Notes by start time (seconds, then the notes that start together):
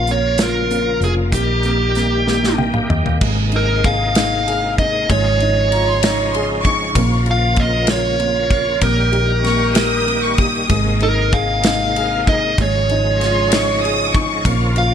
Already playing: A#1 C#3 F3 A#3 F4 F5
0.07 A#3 C#5, closed hi-hat
0.38 F4, snare, closed hi-hat
0.43 A#4
0.71 A#3, closed hi-hat
1.01 F1 F4 G#4, closed hi-hat
1.31 A#1 D#3 G3 A#3 G4, kick, closed hi-hat
1.63 A#3, closed hi-hat
1.95 A#3, snare, closed hi-hat
2.27 A#3, snare
2.44 snare
2.58 A#3 G5, high tom
2.73 F5, mid tom
2.89 D#2 A#3 D#5, mid tom
3.06 floor tom
3.21 G#1 C3 G#3 A#3 D#4, kick, crash
3.52 D#4, ride
3.56 A#4
3.84 G#4 F5, kick, ride
4.15 D#4, snare, ride
4.47 G#4, ride
4.78 D#4 D#5, kick, ride
5.09 G#1 C#3 F3 G#3 C#5, kick, ride
5.40 D#4, ride
5.71 F4 A#5, ride
5.87 C6
6.03 D#4 A#5, snare, ride
6.32 G#4 C6, ride
6.63 D#4 C#6, kick, ride
6.95 A#1 F3 A#3 F4, kick, ride
7.26 F4, ride
7.31 F5
7.56 A#3 D#5, kick, ride
7.87 F4 C#5, snare, ride
8.19 A#3, ride
8.50 F4, kick, ride
8.81 A#1 D#3 G3 A#3 G4 A#4, kick, ride
9.12 G4, ride
9.44 A#3 C#6, snare, ride
9.74 G4 D#6, snare, ride
10.06 A#3, ride
10.23 C#6
10.37 G4 D#6, kick, ride
10.69 G#1 C3 G#3 D#4, kick, ride
11.00 D#4 A#4, ride
11.33 G#4 F5, kick, ride
11.63 D#4, snare, ride
11.96 G#4, ride
12.27 D#4 D#5, kick, ride
12.58 G#1 C#3 F3 G#3 D#4 C#5, kick, ride
12.89 D#4, ride
13.20 F4 C6, snare, ride
13.50 D#4 C#6, snare, ride
13.80 D#6
13.85 G#4, ride
14.12 D#4 C#6, kick, ride
14.45 A#1 A#3 F4, kick, ride
14.76 F4 F5, ride